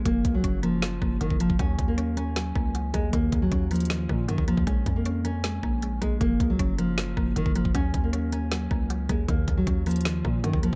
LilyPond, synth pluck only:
\new Staff \with { instrumentName = "Synth pluck" } { \time 4/4 \key ees \dorian \tempo 4 = 156 f4 des'8 bes8 f8 bes8 ges8 bes8 | ges4 des'8 bes8 ges8 bes8 ges8 bes8 | ees4 des'8 bes8 ees8 bes8 ges8 bes8 | aes4 des'8 bes8 aes8 bes8 aes8 bes8 |
f4 des'8 bes8 f8 bes8 ges8 bes8 | ges4 des'8 bes8 ges8 bes8 ges8 bes8 | ees4 des'8 bes8 ees8 bes8 ges8 bes8 | }